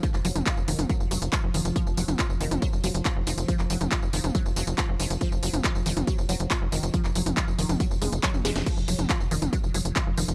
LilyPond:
<<
  \new Staff \with { instrumentName = "Synth arpeggio sound" } { \clef bass \time 4/4 \key ges \lydian \tempo 4 = 139 f8 ges8 f'8 ees8 ges8 ges8 f'8 ees8 | f8 ges8 f'8 ees8 ges8 ges8 f'8 ees8 | f8 ges8 f'8 ees8 ges8 ges8 f'8 ees8 | f8 ges8 f'8 ees8 ges8 ges8 f'8 ees8 |
f8 ges8 f'8 ees8 ges8 aes8 ges8 aes8 | f8 ges8 f'8 ees8 ges8 ges8 f'8 ees8 | }
  \new Staff \with { instrumentName = "Ambient pad" } { \clef bass \time 4/4 \key ges \lydian f1~ | f1~ | f1~ | f1~ |
f1 | f1 | }
  \new Staff \with { instrumentName = "Analog synth bass" } { \clef bass \time 4/4 \key ges \lydian r16 f,,16 f,,16 f,,16 r16 f,,16 f,,16 f,,16 r16 f,,16 f,,16 f,,16 r16 f,,16 f,,16 f,,16 | r16 f,,16 f,,16 f,,16 r16 f,,16 f,,16 f,,16 r16 f,,16 f,,16 f,,16 r16 f,,16 f,,16 f,,16 | r16 f,,16 f,,16 f,,16 r16 f,,16 f,,16 f,,16 r16 f,,16 f,,16 f,,16 r16 f,,16 f,,16 f,,16 | r16 f,,16 f,,16 f,,16 r16 f,,16 f,,16 f,,16 r16 f,,16 f,,16 f,,16 r16 f,,16 f,,16 f,,16 |
r16 f,,16 f,,16 f,,16 r16 f,,16 f,,16 f,,16 r16 f,,16 f,,16 f,,16 r16 f,,16 f,,16 f,,16 | r16 f,,16 f,,16 f,,16 r16 f,,16 f,,16 f,,16 r16 f,,16 f,,16 f,,16 r16 f,,16 f,,16 f,,16 | }
  \new DrumStaff \with { instrumentName = "Drums" } \drummode { \time 4/4 <hh bd tamb>16 <hc tamb>16 <hho tamb>16 <hh tamb toml>16 <hc hh bd tamb>16 tamb16 <hho tamb>16 <hh tamb toml>16 <hh bd tamb>16 tamb16 <hho tamb>16 <hh tamb>16 <hc hh bd tamb>8 <hho tamb>16 <hh tamb>16 | <hh bd tamb>16 tamb16 <hho tamb>16 <hh tamb toml>16 <hc hh bd tamb>16 tamb16 <hho tamb>16 <hh tamb toml>16 <hh bd tamb>16 tamb16 <hho tamb>16 <hh tamb>16 <hc hh bd tamb>8 <hho tamb>16 <hh tamb>16 | <hh bd tamb>16 <hc tamb>16 <hho tamb>16 <hh tamb toml>16 <hc hh bd tamb>16 tamb16 <hho tamb>16 <hh tamb toml>16 <hh bd tamb>16 tamb16 <hho tamb>16 <hh tamb>16 <hc hh bd tamb>8 <hho tamb>16 <hh tamb>16 | <hh bd tamb>16 tamb16 <hho tamb>16 <hh tamb toml>16 <hc hh bd tamb>16 tamb16 <hho tamb>16 <hh tamb toml>16 <hh bd tamb>16 tamb16 <hho tamb>16 <hh tamb>16 <hc hh bd tamb>8 <hho tamb>16 <hh tamb>16 |
<hh bd tamb>16 <hc tamb>16 <hho tamb>16 <hh tamb toml>16 <hc hh bd tamb>16 tamb16 <hho tamb>16 <hh tamb toml>16 <hh bd tamb>16 tamb16 <hho tamb toml>16 <hh tamb>16 <hc hh bd tamb>16 <tamb toml>16 <hho sn tamb>16 <hh sn tamb>16 | <cymc hh bd tamb>16 tamb16 <hho tamb>16 <hh tamb toml>16 <hc hh bd tamb>16 tamb16 <hho tamb>16 <hh tamb toml>16 <hh bd tamb>16 tamb16 <hho tamb>16 <hh tamb>16 <hc hh bd tamb>8 <hho tamb>16 <hh tamb>16 | }
>>